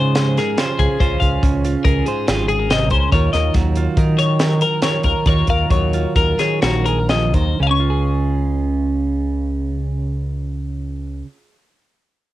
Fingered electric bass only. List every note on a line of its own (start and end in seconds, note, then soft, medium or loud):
0.00 0.37 C#3 medium
0.79 0.87 C#2 medium
1.00 1.16 C#2 medium
1.22 1.37 C#2 medium
1.43 1.75 C#2 medium
1.85 2.01 C#2 medium
2.29 2.91 G#1 medium
2.91 3.07 C#2 medium
3.12 3.28 D#2 medium
3.34 3.50 D#2 medium
3.55 3.87 D#2 medium
3.97 4.62 D#3 medium
5.04 5.12 D#2 medium
5.26 5.43 D#2 medium
5.48 5.65 D#2 medium
5.70 6.05 D#2 medium
6.16 6.33 D#2 medium
6.63 7.34 A#1 medium
7.34 7.53 D#2 medium
7.60 11.21 C#2 medium